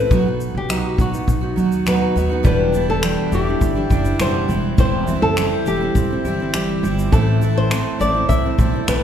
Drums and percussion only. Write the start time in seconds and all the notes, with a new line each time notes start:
0.11 kick, shaker
0.41 shaker
0.70 finger snap, shaker
0.98 kick, shaker
1.14 shaker
1.28 kick, shaker
1.58 shaker
1.72 shaker
1.87 finger snap, shaker
2.17 shaker
2.45 kick, shaker
2.74 shaker
3.03 finger snap, shaker
3.32 shaker
3.61 kick, shaker
3.90 kick, shaker
4.05 shaker
4.20 finger snap, shaker
4.50 shaker
4.78 kick, shaker
5.07 shaker
5.37 finger snap, shaker
5.66 shaker
5.95 kick, shaker
6.25 shaker
6.54 finger snap, shaker
6.84 shaker
6.99 shaker
7.13 kick, shaker
7.42 shaker
7.71 finger snap, shaker
8.01 shaker
8.29 kick, shaker
8.59 kick, shaker
8.88 finger snap, shaker